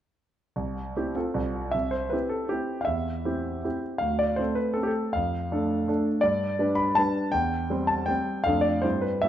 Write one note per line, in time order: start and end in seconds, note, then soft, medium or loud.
0.56 0.94 C2 soft
0.96 1.14 C4 soft
0.96 1.14 E4 soft
0.96 1.14 G4 soft
1.15 1.70 C4 soft
1.15 1.70 F4 soft
1.15 1.70 A4 soft
1.34 1.72 C2 soft
1.71 2.12 C2 soft
1.71 1.92 E5 medium
1.91 2.12 C5 medium
2.10 2.47 C4 soft
2.10 2.48 E4 soft
2.10 2.48 G4 soft
2.10 2.31 B4 soft
2.29 2.50 A4 medium
2.49 2.85 C4 soft
2.49 2.85 E4 soft
2.49 2.81 G4 medium
2.81 3.82 E5 medium
2.81 2.88 F5 soft
2.87 3.24 E2 soft
3.25 3.61 C4 soft
3.25 3.61 E4 soft
3.25 3.61 G4 soft
3.64 3.98 C4 soft
3.64 3.98 E4 soft
3.64 3.98 G4 soft
3.98 4.37 D2 soft
3.98 4.18 F5 medium
4.19 4.38 D5 medium
4.36 4.73 A3 soft
4.36 4.73 C4 soft
4.36 4.72 A4 soft
4.36 4.57 C5 medium
4.55 4.75 B4 medium
4.74 5.11 A3 soft
4.74 5.11 C4 soft
4.74 4.82 A4 medium
4.83 4.90 G4 medium
4.87 5.14 A4 soft
5.13 5.51 F2 soft
5.13 6.06 F5 medium
5.52 5.85 A3 soft
5.52 5.85 D4 soft
5.52 5.86 A4 soft
5.88 6.20 A3 soft
5.88 6.20 D4 soft
5.88 6.20 A4 soft
6.21 6.59 G2 soft
6.21 6.78 D5 medium
6.59 6.94 G3 soft
6.59 6.94 D4 soft
6.59 6.94 B4 soft
6.75 6.96 B5 medium
6.95 7.31 G3 soft
6.95 7.31 D4 soft
6.95 7.31 B4 soft
6.95 7.33 A5 medium
7.32 7.69 E2 soft
7.32 7.89 G5 medium
7.70 8.05 G3 soft
7.70 8.05 C4 soft
7.70 8.06 C5 soft
7.87 8.08 A5 medium
8.06 8.42 G3 soft
8.06 8.42 C4 soft
8.06 8.42 C5 soft
8.06 8.45 G5 medium
8.44 8.83 F2 soft
8.44 8.81 A3 soft
8.44 8.81 D4 soft
8.44 8.81 A4 soft
8.44 8.64 F5 medium
8.61 8.83 D5 medium
8.82 9.22 G2 soft
8.82 9.20 C4 soft
8.82 9.20 E4 soft
8.82 9.21 G4 soft
8.82 9.03 C5 medium
9.01 9.23 B4 medium
9.22 9.29 G2 soft
9.22 9.29 B3 soft
9.22 9.29 F4 soft
9.22 9.29 G4 soft
9.22 9.29 E5 medium